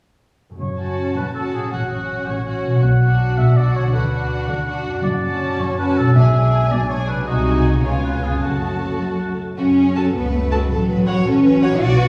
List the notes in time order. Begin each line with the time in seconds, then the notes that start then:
0.50 F#2 A3 C#4
0.55 F#4
0.60 F#1 F#2 C#5
0.78 C#4 F#4 A5
1.16 F#1 F#2 B4
1.35 C#4 F#4 A4 A5
1.54 A2 G#4
1.59 F#3
1.63 C#4
1.68 F#4
1.72 A1 A2 C#4 F#4 F#5
1.90 C#4 F#4 F#5
2.27 A1 A2 C#5
2.46 C#4 F#4 F#5
2.65 B2
2.69 F#3
2.74 D4
2.78 F#4
2.82 B1 B2 F#5
3.01 D4 F#4 F#5
3.38 B1 B2 E5
3.56 D4 F#4 D5 F#5
3.75 D3 C#5
3.80 F#3
3.84 D4
3.89 F#4
3.93 D2 D3 D4 F#4 B4 F#5
4.11 D4 F#4 F#5
4.48 D2 D3 F#5
4.66 D4 F#4 F#5
4.86 F#2
4.90 A3
4.95 C#4
4.99 F#4 D5
5.04 F#1 F#2
5.22 C#4 F#4 A5
5.60 F#1 F#2 C#5
5.78 C#4 F#4 B4 A5
5.97 B2 A4
6.02 G#3
6.07 D4
6.11 D4 G#4 G#5
6.15 B1 B2 G#4 E5
6.33 D4 G#4 G#5
6.71 B1 B2 D5
6.90 D4 G#4 C#5 G#5
7.08 C3 B4
7.14 G#3
7.18 F#4
7.23 F#4 G#4
7.27 C2 C3 D#4 D#5 G#5
7.67 C#3
7.71 G#3
7.76 F4
7.80 B3 B4
7.84 C#2 C#3 F4 C#5 G#5
8.04 B4
8.23 F#2 G#4
8.29 A3
8.33 F#4
8.38 A4
8.42 F#1 F#2 A3 F#4 A5
9.58 F#2 C#4 F#4
9.77 A3 G#4
9.96 F#4 A4 A5
10.15 C#2 B3 B4 C#5
10.33 A3 F#4
10.51 G#3 A3 F#4 A4 A5
10.70 A1 A2 F#3 A4
10.88 F#3 B4
11.06 F#4 C#5 F#5
11.25 A1 C#4 A4 C#5
11.44 B4
11.63 F#3 F#4 C#5 F#5
11.81 B1 B2 F#4 D5
12.00 B4